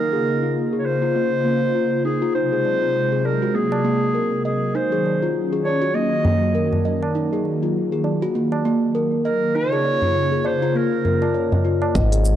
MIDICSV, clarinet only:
0, 0, Header, 1, 2, 480
1, 0, Start_track
1, 0, Tempo, 600000
1, 1880, Time_signature, 4, 2, 24, 8
1, 9889, End_track
2, 0, Start_track
2, 0, Title_t, "Clarinet"
2, 0, Program_c, 0, 71
2, 0, Note_on_c, 0, 70, 106
2, 439, Note_off_c, 0, 70, 0
2, 631, Note_on_c, 0, 73, 68
2, 685, Note_on_c, 0, 72, 105
2, 697, Note_off_c, 0, 73, 0
2, 1640, Note_off_c, 0, 72, 0
2, 1645, Note_on_c, 0, 68, 80
2, 1866, Note_off_c, 0, 68, 0
2, 1880, Note_on_c, 0, 72, 110
2, 2603, Note_on_c, 0, 70, 85
2, 2615, Note_off_c, 0, 72, 0
2, 2842, Note_on_c, 0, 68, 92
2, 2854, Note_off_c, 0, 70, 0
2, 3558, Note_off_c, 0, 68, 0
2, 3563, Note_on_c, 0, 68, 77
2, 3804, Note_on_c, 0, 72, 90
2, 3816, Note_off_c, 0, 68, 0
2, 4310, Note_off_c, 0, 72, 0
2, 4522, Note_on_c, 0, 73, 87
2, 4758, Note_on_c, 0, 75, 105
2, 4770, Note_off_c, 0, 73, 0
2, 5479, Note_off_c, 0, 75, 0
2, 7402, Note_on_c, 0, 70, 92
2, 7646, Note_on_c, 0, 73, 120
2, 7658, Note_off_c, 0, 70, 0
2, 8373, Note_on_c, 0, 72, 96
2, 8385, Note_off_c, 0, 73, 0
2, 8612, Note_on_c, 0, 70, 86
2, 8624, Note_off_c, 0, 72, 0
2, 9326, Note_off_c, 0, 70, 0
2, 9889, End_track
0, 0, End_of_file